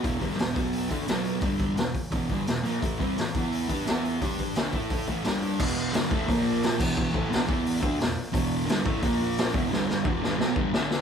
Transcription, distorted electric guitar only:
0.02 E2 B2 E3
0.19 G2 D3 G3
0.37 E2 B2
0.53 B2 F#3 B3
0.90 D3 A3 D4
1.07 B2 F#3 B3
1.40 G2 D3 G3
1.76 E2 B2
2.11 E2 B2 E3
2.29 G2 D3 G3
2.47 E2 B2
2.63 A#2 F3 A#3
2.81 A2 E3 A3
2.99 C3 G3 C4
3.18 A2 E3
3.36 E3 B3 E4
3.69 G3 D4 G4
3.86 E3 B3 E4
4.22 G3 D4 G4
4.56 D3 A3 D4
4.74 A3 E4 A4
5.08 A2 E3 A3
5.24 G3 D4 G4
5.59 E2 B2 E3
5.93 G2 D3 G3
6.12 A2 E3 A3
6.27 A#2 F3 A#3
6.79 E2 B2 E3
7.13 A2 E3 A3
7.30 E2 B2 E3
7.47 E3 B3 E4
7.81 D3 A3 D4
7.98 E2 B2
8.32 E2 B2 E3
8.66 G2 D3 G3
8.84 A2 E3 A3
9.01 A#2 F3 A#3
9.54 E2 B2 E3
9.70 G2 D3 G3
10.04 E2 B2 E3
10.22 G2 D3 G3
10.38 B2 F#3 B3
10.55 G2 D3 G3
10.72 D3 A3 D4

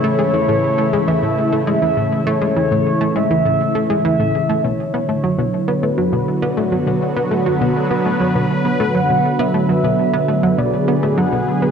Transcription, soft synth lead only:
Already playing: C#5
1.08 E5
1.67 E5
2.27 C#5
3.16 E5
4.05 E5
4.64 C#5
5.83 B4
6.42 D5
8.80 F#5
9.40 E5
10.58 D5
11.18 F#5

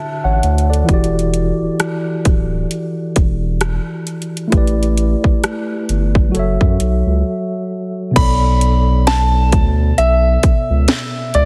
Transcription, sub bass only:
0.24 A1
0.43 D2
0.89 E1
1.61 D1
2.25 D1
3.16 E1
4.52 A1
5.24 G1
5.89 G1
6.34 F#1
6.61 F#2
6.80 B1
7.06 C#2
8.16 B1
9.53 D2
9.98 B1
10.70 C#2
11.35 C#2

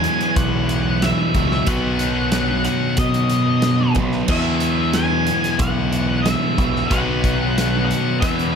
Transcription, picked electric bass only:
0.36 B1
1.35 C#2
1.68 B1
2.98 B2
3.96 B1
4.29 E2
5.59 B1
6.58 B1
6.91 B1
8.23 E2

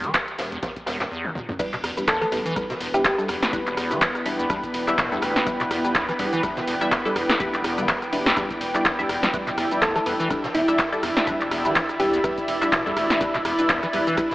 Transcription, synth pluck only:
2.08 A4
2.21 A4
2.94 G4
3.05 G4
9.82 A4
9.96 A4
10.55 E4
12.00 G4

